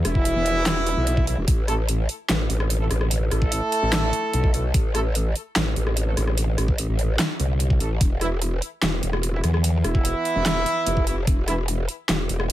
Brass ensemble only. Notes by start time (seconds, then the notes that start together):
0.05 E3 B3 E4
1.27 E3 B3 E4
1.68 A3 E4 A4
2.81 A3 E4 A4
3.31 A3 E4 A4
4.54 A3 E4 A4
4.95 A3 E4 A4
6.07 A3 E4 A4
7.80 A3 E4 A4
8.21 E3 B3 E4
9.34 E3 B3 E4
9.84 E3 B3 E4
11.07 E3 B3 E4
11.48 E3 B3 E4